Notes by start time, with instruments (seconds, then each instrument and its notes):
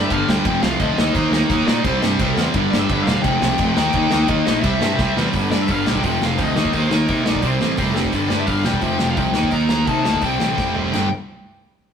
Already playing: distorted electric guitar G2 D3 G3
0.04 lead electric guitar E5
0.10 picked electric bass G1, distorted electric guitar G2 D3 G3, lead electric guitar F5, kick, crash
0.28 picked electric bass D2, distorted electric guitar G2 D3 G3, lead electric guitar G5, snare
0.45 picked electric bass F1, distorted electric guitar F2 C3 F3, lead electric guitar G5, kick, crash
0.63 picked electric bass C2, distorted electric guitar F2 C3 F3, lead electric guitar F5, snare
0.80 picked electric bass D2, distorted electric guitar F2 C3 F3, lead electric guitar D#5, kick, crash
0.98 picked electric bass D#2, distorted electric guitar D#3 A#3 D#4, snare
1.13 picked electric bass D#2, distorted electric guitar D#3 A#3 D#4, lead electric guitar C5, kick, crash
1.31 picked electric bass D#2, distorted electric guitar D#3 A#3 D#4, lead electric guitar A#4, snare
1.50 picked electric bass D#2, distorted electric guitar D#3 A#3 D#4, kick, crash
1.67 picked electric bass A#2, distorted electric guitar D#3 A#3 D#4, lead electric guitar D5, snare
1.83 picked electric bass C2, distorted electric guitar C3 G3 C4, lead electric guitar C5, kick, crash
2.01 picked electric bass G2, distorted electric guitar C3 G3 C4, snare
2.19 picked electric bass C2, distorted electric guitar C3 G3 C4, kick, crash
2.37 picked electric bass E2, distorted electric guitar C3 G3 C4, snare
2.54 picked electric bass G1, distorted electric guitar G2 D3 G3, kick, crash
2.71 picked electric bass G1, distorted electric guitar G2 D3 G3, lead electric guitar D5, snare
2.78 lead electric guitar E5
2.90 picked electric bass G1, distorted electric guitar G2 D3 G3, kick, crash
3.03 picked electric bass E1, distorted electric guitar G2 D3 G3, lead electric guitar F5, snare
3.22 picked electric bass F1, distorted electric guitar F2 C3 F3, lead electric guitar G5, kick, crash
3.40 picked electric bass C2, distorted electric guitar F2 C3 F3, snare
3.58 picked electric bass F1, distorted electric guitar F2 C3 F3, kick, crash
3.75 picked electric bass D#2, distorted electric guitar D#3 A#3 D#4, lead electric guitar G5, snare
3.93 picked electric bass D#2, distorted electric guitar D#3 A#3 D#4, kick, crash
4.11 picked electric bass D#2, distorted electric guitar D#3 A#3 D#4, snare
4.28 picked electric bass D#2, distorted electric guitar D#3 A#3 D#4, lead electric guitar D#5, kick, crash
4.46 picked electric bass A#1, distorted electric guitar D#3 A#3 D#4, snare
4.60 picked electric bass C2, distorted electric guitar C3 G3 C4, lead electric guitar E5, kick, crash
4.81 picked electric bass G2, distorted electric guitar C3 G3 C4, snare
4.99 picked electric bass C2, distorted electric guitar C3 G3 C4, kick, snare
5.17 picked electric bass E2, distorted electric guitar C3 G3 C4, snare
5.33 picked electric bass G1, distorted electric guitar G2 D3 G3, kick, open hi-hat
5.50 distorted electric guitar G2 D3 G3, picked electric bass G2, lead electric guitar D5, snare
5.61 lead electric guitar E5
5.68 picked electric bass G1, distorted electric guitar G2 D3 G3, lead electric guitar F5, kick, open hi-hat
5.86 picked electric bass B1, distorted electric guitar G2 D3 G3, lead electric guitar G5, snare
5.95 kick
6.02 picked electric bass F1, distorted electric guitar F2 C3 F3, kick, open hi-hat
6.06 lead electric guitar G5
6.20 picked electric bass F1, distorted electric guitar F2 C3 F3, snare
6.25 lead electric guitar F5
6.37 picked electric bass D2, distorted electric guitar F2 C3 F3, kick, open hi-hat
6.43 lead electric guitar D#5
6.56 picked electric bass D#2, distorted electric guitar D#3 A#3 D#4, snare
6.65 kick
6.73 picked electric bass D#2, distorted electric guitar D#3 A#3 D#4, kick, open hi-hat
6.79 lead electric guitar C5
6.89 picked electric bass D#2, distorted electric guitar D#3 A#3 D#4, snare
6.95 lead electric guitar A#4
7.07 picked electric bass C3, distorted electric guitar D#3 A#3 D#4, kick, open hi-hat
7.24 distorted electric guitar D#3 A#3 D#4, snare
7.28 picked electric bass B1, lead electric guitar D5
7.35 kick
7.42 picked electric bass C2, distorted electric guitar C3 G3 C4, kick, open hi-hat
7.47 lead electric guitar C5
7.59 picked electric bass A1, distorted electric guitar C3 G3 C4, snare
7.77 picked electric bass F1, distorted electric guitar C3 G3 C4, kick, open hi-hat
7.95 distorted electric guitar C3 G3 C4, snare
8.05 kick
8.13 picked electric bass G1, distorted electric guitar G2 D3 G3, kick, open hi-hat
8.29 distorted electric guitar G2 D3 G3, picked electric bass G2, lead electric guitar D5, snare
8.39 lead electric guitar E5
8.46 picked electric bass G1, distorted electric guitar G2 D3 G3, lead electric guitar F5, kick, open hi-hat
8.64 picked electric bass E1, distorted electric guitar G2 D3 G3, lead electric guitar G5, snare
8.74 kick
8.81 picked electric bass F1, distorted electric guitar F2 C3 F3, kick, open hi-hat
8.98 picked electric bass F1, distorted electric guitar F2 C3 F3, snare
9.10 lead electric guitar F5
9.16 picked electric bass C2, distorted electric guitar F2 C3 F3, lead electric guitar G5, kick, open hi-hat
9.33 picked electric bass D#2, distorted electric guitar D#3 A#3 D#4, snare
9.43 kick
9.51 picked electric bass D#2, distorted electric guitar D#3 A#3 D#4, lead electric guitar A#5, kick, open hi-hat
9.69 picked electric bass D#2, distorted electric guitar D#3 A#3 D#4, snare
9.86 picked electric bass C3, distorted electric guitar D#3 A#3 D#4, lead electric guitar A5, kick, open hi-hat
10.05 picked electric bass D2, distorted electric guitar D#3 A#3 D#4, snare
10.14 kick
10.22 picked electric bass C2, distorted electric guitar C3 G3 C4, lead electric guitar G5, kick, open hi-hat
10.40 picked electric bass A1, distorted electric guitar C3 G3 C4, snare
10.58 picked electric bass F1, distorted electric guitar C3 G3 C4, kick, snare
10.75 distorted electric guitar C3 G3 C4, floor tom
10.93 picked electric bass G1, distorted electric guitar G2 D3 G3, lead electric guitar G5, snare, crash